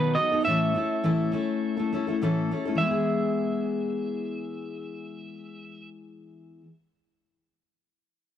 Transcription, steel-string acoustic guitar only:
0.00 0.16 B2 medium
0.00 0.16 D#3 medium
0.00 0.15 F#3 medium
0.00 0.16 B3 medium
0.00 0.16 D#4 medium
0.00 0.17 A4 medium
0.16 0.30 F#3 medium
0.16 0.31 B3 medium
0.16 0.31 D#4 medium
0.16 0.30 A4 medium
0.32 0.47 F#3 soft
0.32 0.46 B3 soft
0.32 0.46 D#4 soft
0.32 0.45 A4 soft
0.46 0.75 A2 medium
0.46 0.75 E3 medium
0.46 0.73 A3 medium
0.46 0.74 C#4 medium
0.46 0.75 E4 medium
0.46 0.76 A4 medium
0.74 1.03 A3 medium
0.74 1.03 C#4 soft
0.74 1.04 E4 medium
0.74 1.04 A4 medium
1.03 1.33 A2 medium
1.03 1.33 E3 medium
1.03 1.30 A3 medium
1.03 1.32 C#4 medium
1.03 1.33 E4 medium
1.03 1.33 A4 medium
1.32 1.76 A3 medium
1.32 1.77 C#4 medium
1.32 1.77 E4 medium
1.32 1.76 A4 medium
1.77 1.91 A3 soft
1.77 1.92 C#4 soft
1.77 1.92 E4 soft
1.77 1.91 A4 soft
1.93 2.06 A3 soft
1.93 2.07 C#4 medium
1.93 2.07 E4 soft
1.93 2.06 A4 medium
2.07 2.22 A3 soft
2.07 2.21 C#4 soft
2.07 2.22 E4 soft
2.07 2.21 A4 soft
2.22 2.50 A2 medium
2.22 2.50 E3 medium
2.22 2.50 A3 medium
2.22 2.51 C#4 medium
2.22 2.51 E4 medium
2.22 2.51 A4 medium
2.51 2.65 A3 medium
2.51 2.66 C#4 soft
2.51 2.66 E4 soft
2.51 2.64 A4 medium
2.65 2.79 A3 soft
2.65 2.81 C#4 soft
2.65 2.80 E4 soft
2.65 2.79 A4 medium
2.75 6.61 E3 medium
2.80 6.63 G#3 medium
2.80 6.65 B3 medium
2.88 6.67 E4 medium
2.88 6.69 G#4 medium

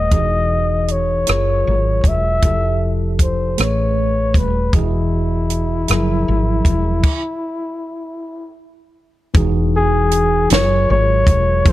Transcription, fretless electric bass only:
0.12 1.24 E1 medium
1.29 1.63 F#1 medium
1.67 2.01 G#1 medium
2.05 2.39 E1 medium
2.43 3.54 F1 medium
3.59 4.32 A1 medium
4.35 4.70 D#1 medium
4.74 5.85 E1 medium
5.90 6.24 F#1 medium
6.28 6.62 G#1 medium
6.66 7.00 E1 medium
9.35 10.46 E1 loud
10.51 10.86 F#1 medium
10.90 11.24 G#1 medium
11.28 11.62 E1 loud
11.66 11.72 F1 loud

